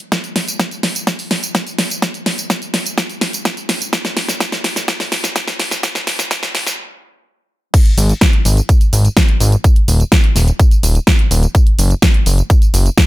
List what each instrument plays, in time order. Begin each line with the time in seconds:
0.00 closed hi-hat
0.12 kick, snare, closed hi-hat, tambourine
0.24 closed hi-hat, tambourine
0.36 snare, open hi-hat
0.48 closed hi-hat, tambourine
0.60 kick, snare, closed hi-hat, tambourine
0.71 closed hi-hat, tambourine
0.83 snare, open hi-hat
0.95 closed hi-hat, tambourine
1.07 kick, snare, closed hi-hat, tambourine
1.19 open hi-hat, tambourine
1.31 snare, open hi-hat
1.43 closed hi-hat, tambourine
1.55 kick, snare, closed hi-hat, tambourine
1.67 closed hi-hat, tambourine
1.79 snare, open hi-hat
1.90 closed hi-hat, tambourine
2.02 kick, snare, closed hi-hat, tambourine
2.14 closed hi-hat, tambourine
2.26 snare, open hi-hat
2.38 closed hi-hat, tambourine
2.50 kick, snare, closed hi-hat, tambourine
2.62 closed hi-hat, tambourine
2.74 snare, open hi-hat
2.86 closed hi-hat, tambourine
2.98 kick, snare, closed hi-hat, tambourine
3.10 closed hi-hat, tambourine
3.21 snare, open hi-hat
3.33 closed hi-hat, tambourine
3.45 kick, snare, closed hi-hat, tambourine
3.57 closed hi-hat, tambourine
3.69 snare, open hi-hat
3.81 closed hi-hat, tambourine
3.93 kick, snare, closed hi-hat, tambourine
4.05 snare, closed hi-hat, tambourine
4.17 snare, open hi-hat
4.29 snare, closed hi-hat, tambourine
4.40 kick, snare, closed hi-hat, tambourine
4.52 snare, closed hi-hat, tambourine
4.64 snare, open hi-hat
4.76 snare, closed hi-hat, tambourine
4.88 kick, snare, closed hi-hat, tambourine
5.00 snare, open hi-hat, tambourine
5.12 snare, open hi-hat
5.24 snare, closed hi-hat, tambourine
5.36 kick, snare, closed hi-hat, tambourine
5.48 snare, closed hi-hat, tambourine
5.59 snare, open hi-hat
5.71 snare, closed hi-hat, tambourine
5.83 kick, snare, closed hi-hat, tambourine
5.95 snare, closed hi-hat, tambourine
6.07 snare, open hi-hat
6.19 snare, closed hi-hat, tambourine
6.31 kick, snare, closed hi-hat, tambourine
6.43 snare, closed hi-hat, tambourine
6.55 snare, open hi-hat
6.67 snare, closed hi-hat, tambourine
7.74 kick, closed hi-hat, crash, tambourine
7.86 closed hi-hat
7.98 analog synth bass G#1, open hi-hat, tambourine
8.09 closed hi-hat, tambourine
8.21 kick, snare, closed hi-hat, tambourine
8.33 closed hi-hat
8.45 analog synth bass G#1, open hi-hat, tambourine
8.57 closed hi-hat, tambourine
8.69 kick, closed hi-hat, tambourine
8.81 closed hi-hat, tambourine
8.93 analog synth bass G#1, open hi-hat, tambourine
9.05 closed hi-hat, tambourine
9.17 kick, snare, closed hi-hat, tambourine
9.29 closed hi-hat
9.40 analog synth bass G#1, open hi-hat, tambourine
9.52 closed hi-hat, tambourine
9.64 kick, closed hi-hat, tambourine
9.76 closed hi-hat
9.88 analog synth bass D#1, open hi-hat, tambourine
10.00 closed hi-hat, tambourine
10.12 kick, snare, closed hi-hat, tambourine
10.24 closed hi-hat
10.36 analog synth bass D#1, snare, open hi-hat, tambourine
10.48 closed hi-hat, tambourine
10.59 kick, closed hi-hat, tambourine
10.71 closed hi-hat, tambourine
10.83 analog synth bass D#1, open hi-hat, tambourine
10.95 closed hi-hat, tambourine
11.07 kick, snare, closed hi-hat, tambourine
11.19 closed hi-hat
11.31 analog synth bass D#1, open hi-hat, tambourine
11.43 closed hi-hat, tambourine
11.55 kick, closed hi-hat, tambourine
11.67 closed hi-hat
11.79 analog synth bass F#1, open hi-hat, tambourine
11.90 closed hi-hat, tambourine
12.02 kick, snare, closed hi-hat, tambourine
12.14 closed hi-hat
12.26 analog synth bass F#1, open hi-hat, tambourine
12.38 closed hi-hat, tambourine
12.50 kick, closed hi-hat, tambourine
12.62 closed hi-hat, tambourine
12.74 analog synth bass F#1, open hi-hat, tambourine
12.86 closed hi-hat, tambourine
12.98 kick, snare, closed hi-hat, tambourine